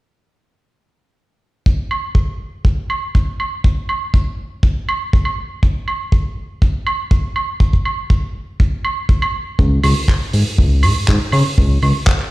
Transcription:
1.66 kick loud
1.91 high woodblock medium
2.15 kick loud
2.65 kick loud
2.90 high woodblock medium
3.15 kick medium
3.40 high woodblock medium
3.64 kick loud
3.89 high woodblock medium
4.14 kick loud
4.63 kick loud
4.89 high woodblock medium
5.13 kick loud
5.25 high woodblock medium
5.63 kick loud
5.88 high woodblock medium
6.12 kick loud
6.62 kick loud
6.87 high woodblock medium
7.11 kick loud
7.36 high woodblock medium
7.60 kick loud
7.73 kick medium
7.85 high woodblock medium
8.10 kick loud
8.60 kick loud
8.85 high woodblock medium
9.09 kick loud
9.22 high woodblock medium
9.59 9.80 C#2 medium
9.59 kick loud
9.84 9.94 C#2 medium
9.84 open hi-hat medium
9.84 high woodblock medium
10.08 kick loud
10.08 clap medium
10.33 10.44 G#2 medium
10.33 open hi-hat medium
10.58 10.85 C#2 medium
10.58 kick loud
10.83 10.94 G#2 medium
10.83 open hi-hat medium
10.83 high woodblock medium
10.96 11.06 G#2 soft
11.08 11.19 G#2 medium
11.08 kick loud
11.08 clap loud
11.32 11.43 C#3 medium
11.32 open hi-hat medium
11.32 high woodblock medium
11.58 11.78 C#2 loud
11.58 kick loud
11.82 11.93 C#2 medium
11.82 open hi-hat medium
11.82 high woodblock medium
12.07 kick loud
12.07 clap loud
12.20 clap soft

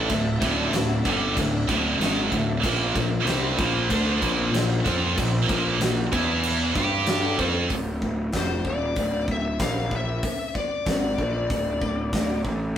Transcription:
0.00 0.10 A3 loud
0.00 2.59 D4 medium
0.00 2.59 E5 loud
0.00 2.59 A5 medium
0.09 0.40 D1 medium
0.09 0.35 D2 medium
0.09 0.36 A2 medium
0.09 kick loud
0.09 crash medium
0.40 0.70 D1 loud
0.40 0.72 D2 medium
0.40 0.73 A2 loud
0.40 0.73 D3 loud
0.40 kick loud
0.40 crash medium
0.71 1.02 D1 medium
0.71 1.00 D2 medium
0.71 0.99 A2 medium
0.71 snare loud
0.71 crash medium
1.05 1.35 G1 loud
1.05 1.35 G2 loud
1.05 1.36 D3 loud
1.05 1.36 G3 loud
1.05 kick loud
1.05 crash medium
1.35 1.66 D1 medium
1.35 1.62 D2 medium
1.35 1.62 A2 medium
1.35 kick loud
1.35 crash medium
1.68 1.98 D1 loud
1.68 1.99 D2 medium
1.68 2.00 A2 loud
1.68 2.00 D3 medium
1.68 kick loud
1.68 crash medium
1.98 2.29 G#1 loud
1.98 2.31 G#2 medium
1.98 2.31 D#3 medium
1.98 2.32 G#3 loud
1.98 snare loud
1.98 crash medium
2.31 2.61 D1 medium
2.31 2.57 D2 medium
2.31 2.58 A2 medium
2.31 kick medium
2.31 crash medium
2.62 2.93 A#1 medium
2.62 2.93 A#2 loud
2.62 6.08 A#2 medium
2.62 2.94 F3 loud
2.62 2.94 A#3 loud
2.62 6.08 F4 medium
2.62 6.08 C5 loud
2.62 kick loud
2.62 crash medium
2.95 3.24 A#1 medium
2.95 3.21 A#2 medium
2.95 3.21 F3 medium
2.95 kick loud
2.95 crash medium
3.25 3.55 C2 medium
3.25 3.58 C3 medium
3.25 3.58 G3 loud
3.25 3.58 C4 loud
3.25 snare loud
3.25 crash medium
3.58 3.88 A#1 loud
3.58 3.90 A#2 medium
3.58 3.90 F3 medium
3.58 3.90 A#3 medium
3.58 kick loud
3.58 crash medium
3.89 4.19 D2 loud
3.89 4.21 D3 loud
3.89 4.22 A3 loud
3.89 4.22 D4 loud
3.89 kick loud
3.89 crash medium
4.21 4.51 A#1 medium
4.21 4.52 A#2 medium
4.21 4.53 F3 loud
4.21 4.53 A#3 loud
4.21 kick loud
4.21 crash medium
4.52 4.82 A#1 medium
4.52 4.79 A#2 medium
4.52 4.79 F3 medium
4.52 snare loud
4.52 crash medium
4.86 5.15 F2 medium
4.86 5.16 F3 medium
4.86 5.17 C4 loud
4.86 5.17 F4 loud
4.86 kick loud
4.86 crash medium
5.17 5.46 A#1 medium
5.17 5.42 A#2 medium
5.17 5.43 F3 medium
5.17 kick loud
5.17 crash medium
5.49 5.78 A#1 medium
5.49 5.79 A#2 medium
5.49 5.80 F3 loud
5.49 5.80 A#3 loud
5.49 kick loud
5.49 crash medium
5.79 6.09 A#1 medium
5.79 6.07 A#2 medium
5.79 6.07 F3 medium
5.79 snare loud
5.79 crash medium
6.12 6.71 E2 medium
6.12 6.74 E3 medium
6.12 6.75 E3 medium
6.12 6.74 B3 medium
6.12 6.76 B3 medium
6.12 6.75 E4 medium
6.12 6.77 E4 medium
6.12 kick loud
6.12 crash medium
6.43 crash medium
6.75 7.35 G2 medium
6.75 7.38 G3 medium
6.75 7.37 D4 medium
6.75 7.38 D4 medium
6.75 7.39 G4 loud
6.75 7.38 A4 medium
6.75 kick loud
6.75 crash medium
7.06 snare loud
7.06 crash medium
7.38 7.67 F2 loud
7.38 7.70 F3 medium
7.38 7.70 C4 loud
7.38 7.70 F4 medium
7.38 kick loud
7.38 crash medium
7.70 7.99 D1 medium
7.70 kick loud
7.70 open hi-hat medium
8.01 8.31 D1 medium
8.01 kick medium
8.33 8.63 F1 medium
8.33 kick medium
8.33 snare loud
8.33 open hi-hat medium
8.37 8.65 C5 medium
8.64 8.94 D#1 loud
8.64 9.25 D5 medium
8.64 kick medium
8.96 9.26 D1 medium
8.96 kick loud
8.96 open hi-hat medium
9.28 9.57 D1 loud
9.28 9.61 E5 medium
9.28 kick medium
9.59 10.19 A#1 medium
9.59 9.93 F5 loud
9.59 kick loud
9.59 snare loud
9.59 open hi-hat medium
9.91 kick medium
9.96 10.55 E5 medium
10.23 kick loud
10.23 open hi-hat medium
10.55 12.41 D5 medium
10.55 kick medium
10.86 11.16 G#1 medium
10.86 kick loud
10.86 snare loud
10.86 open hi-hat medium
11.18 11.47 A#1 loud
11.18 kick medium
11.50 11.79 D1 medium
11.50 kick loud
11.50 open hi-hat medium
11.81 12.10 D1 medium
11.81 kick medium
12.12 12.42 D1 medium
12.12 kick loud
12.12 snare loud
12.12 open hi-hat medium
12.44 12.74 A1 loud
12.44 kick medium

